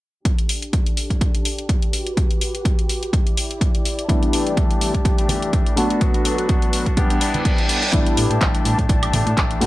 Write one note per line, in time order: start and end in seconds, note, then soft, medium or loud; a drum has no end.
0.25 1.92 D4 medium
0.25 4.05 G4 medium
0.25 1.92 A4 medium
0.25 kick loud
0.25 closed hi-hat medium
0.39 closed hi-hat soft
0.49 open hi-hat medium
0.62 closed hi-hat soft
0.73 kick loud
0.73 closed hi-hat medium
0.86 closed hi-hat soft
0.97 open hi-hat medium
1.10 kick medium
1.10 closed hi-hat soft
1.21 kick loud
1.21 closed hi-hat medium
1.35 closed hi-hat soft
1.45 open hi-hat medium
1.58 closed hi-hat soft
1.69 kick loud
1.69 closed hi-hat medium
1.82 closed hi-hat soft
1.93 3.12 F#4 medium
1.93 3.12 B4 medium
1.93 open hi-hat medium
2.07 closed hi-hat soft
2.17 kick loud
2.17 closed hi-hat medium
2.31 closed hi-hat soft
2.41 open hi-hat loud
2.55 closed hi-hat soft
2.65 kick loud
2.65 closed hi-hat medium
2.79 closed hi-hat soft
2.89 open hi-hat medium
3.03 closed hi-hat soft
3.13 4.08 E4 medium
3.13 5.75 D5 medium
3.13 kick loud
3.13 closed hi-hat medium
3.27 closed hi-hat soft
3.37 open hi-hat loud
3.51 closed hi-hat soft
3.61 kick loud
3.61 closed hi-hat medium
3.75 closed hi-hat soft
3.85 open hi-hat medium
3.99 closed hi-hat soft
4.08 4.22 E3 medium
4.08 5.72 G3 medium
4.08 4.23 A3 loud
4.08 5.73 B3 medium
4.08 5.73 D4 medium
4.08 4.22 D4 medium
4.08 5.73 E4 medium
4.08 5.76 G4 medium
4.08 4.21 G4 medium
4.08 5.76 A5 medium
4.08 kick loud
4.08 closed hi-hat medium
4.22 4.32 A3 soft
4.22 4.33 D4 medium
4.22 4.33 G4 medium
4.22 closed hi-hat soft
4.33 4.56 E3 medium
4.33 4.56 A3 medium
4.33 4.57 D4 medium
4.33 4.57 G4 medium
4.33 open hi-hat loud
4.47 closed hi-hat soft
4.57 4.94 E3 medium
4.57 4.95 A3 medium
4.57 4.93 G4 loud
4.57 kick loud
4.57 closed hi-hat medium
4.71 closed hi-hat soft
4.81 open hi-hat medium
4.94 5.19 A3 soft
4.94 5.18 D4 soft
4.94 5.17 G4 medium
4.94 kick medium
4.94 closed hi-hat soft
5.05 kick loud
5.05 closed hi-hat medium
5.18 5.28 A3 soft
5.18 5.29 D4 medium
5.18 5.29 G4 medium
5.18 closed hi-hat soft
5.29 5.52 E3 medium
5.29 5.52 A3 medium
5.29 5.53 D4 medium
5.29 5.54 G4 medium
5.29 open hi-hat loud
5.29 tambourine medium
5.29 high conga medium
5.42 closed hi-hat soft
5.42 tambourine soft
5.53 5.77 A3 medium
5.53 5.77 D4 medium
5.53 5.78 G4 medium
5.53 kick loud
5.53 closed hi-hat medium
5.66 closed hi-hat soft
5.76 5.90 F#3 medium
5.76 6.92 A3 medium
5.76 6.93 B3 medium
5.76 5.91 B3 medium
5.76 6.93 D4 medium
5.76 5.90 D4 medium
5.76 6.96 F#4 medium
5.76 6.93 F#4 medium
5.76 5.88 F#4 medium
5.76 6.96 B4 medium
5.76 open hi-hat loud
5.76 tambourine medium
5.90 6.00 B3 medium
5.90 6.01 D4 medium
5.90 6.01 F#4 medium
5.90 closed hi-hat soft
6.01 6.14 F#3 medium
6.01 6.15 B3 medium
6.01 6.14 D4 medium
6.01 6.13 F#4 loud
6.01 kick loud
6.01 closed hi-hat medium
6.14 6.24 B3 medium
6.14 6.25 D4 medium
6.14 6.25 F#4 medium
6.14 closed hi-hat soft
6.24 6.47 F#3 medium
6.24 6.48 B3 medium
6.24 6.49 D4 medium
6.24 6.49 F#4 medium
6.24 open hi-hat loud
6.38 closed hi-hat soft
6.38 tambourine soft
6.49 6.86 F#3 medium
6.49 6.87 B3 medium
6.49 6.86 D4 loud
6.49 6.84 F#4 medium
6.49 kick loud
6.49 closed hi-hat medium
6.62 closed hi-hat soft
6.73 open hi-hat medium
6.73 tambourine medium
6.86 6.95 B3 soft
6.86 6.96 D4 medium
6.86 6.97 F#4 medium
6.86 kick medium
6.86 closed hi-hat soft
6.96 7.89 G3 medium
6.96 7.10 B3 medium
6.96 7.89 B3 medium
6.96 7.11 D4 medium
6.96 7.89 D4 medium
6.96 7.92 E4 medium
6.96 7.08 G4 loud
6.96 7.92 D5 medium
6.96 7.89 F#5 medium
6.96 kick loud
6.96 closed hi-hat medium
6.96 reverse cymbal medium
7.10 7.21 D4 soft
7.10 7.21 G4 medium
7.10 closed hi-hat soft
7.20 7.44 B3 medium
7.20 7.45 D4 medium
7.20 7.45 G4 medium
7.20 open hi-hat loud
7.20 tambourine medium
7.34 closed hi-hat soft
7.34 tambourine soft
7.34 high conga medium
7.45 7.67 B3 medium
7.45 7.69 D4 medium
7.45 7.70 G4 medium
7.45 kick loud
7.45 closed hi-hat medium
7.45 tambourine soft
7.58 closed hi-hat soft
7.68 7.82 B3 medium
7.68 7.83 D4 medium
7.68 7.81 G4 medium
7.68 open hi-hat loud
7.68 tambourine medium
7.82 7.93 D4 medium
7.82 7.93 G4 medium
7.82 closed hi-hat soft
7.92 8.03 A1 loud
7.92 8.06 E3 medium
7.92 9.56 G3 medium
7.92 8.07 A3 medium
7.92 9.57 B3 medium
7.92 9.57 D4 medium
7.92 8.06 D4 medium
7.92 9.57 E4 loud
7.92 8.05 G4 loud
7.92 9.59 D5 medium
7.92 9.59 A5 medium
7.92 kick loud
7.92 closed hi-hat medium
8.06 8.31 A3 soft
8.06 8.30 D4 medium
8.06 8.29 G4 medium
8.06 closed hi-hat soft
8.17 8.27 A2 medium
8.17 open hi-hat loud
8.17 tambourine medium
8.30 8.38 A2 medium
8.30 8.40 A3 medium
8.30 8.41 D4 medium
8.30 8.41 G4 medium
8.30 closed hi-hat soft
8.41 8.51 A1 loud
8.41 8.64 E3 medium
8.41 8.65 A3 medium
8.41 8.65 D4 medium
8.41 8.66 G4 loud
8.41 kick loud
8.41 clap loud
8.41 closed hi-hat medium
8.55 closed hi-hat soft
8.65 8.75 A2 medium
8.65 8.78 E3 medium
8.65 8.79 A3 medium
8.65 8.78 D4 medium
8.65 8.77 G4 medium
8.65 open hi-hat medium
8.78 8.86 A2 loud
8.78 9.02 D4 medium
8.78 9.01 G4 medium
8.78 kick medium
8.78 closed hi-hat soft
8.89 9.07 A1 medium
8.89 kick loud
8.89 closed hi-hat medium
9.02 9.12 A3 soft
9.02 9.13 D4 medium
9.02 9.13 G4 medium
9.02 closed hi-hat soft
9.02 high woodblock medium
9.13 9.23 A2 medium
9.13 9.26 E3 medium
9.13 9.27 A3 medium
9.13 9.26 D4 medium
9.13 9.25 G4 medium
9.13 open hi-hat loud
9.13 tambourine loud
9.13 high conga medium
9.26 9.34 A2 loud
9.26 9.36 A3 soft
9.26 9.37 D4 medium
9.26 9.37 G4 medium
9.26 closed hi-hat soft
9.26 tambourine medium
9.37 9.55 A1 medium
9.37 9.60 E3 medium
9.37 9.61 A3 medium
9.37 9.62 G4 loud
9.37 kick loud
9.37 clap loud
9.37 closed hi-hat medium
9.51 closed hi-hat soft
9.60 9.66 G2 medium
9.60 9.66 F#3 medium
9.60 9.66 A3 medium
9.60 9.66 B3 medium
9.60 9.66 D4 medium
9.60 9.66 F#4 medium
9.60 9.66 F#5 medium
9.60 9.66 B5 medium
9.60 open hi-hat medium
9.60 tambourine loud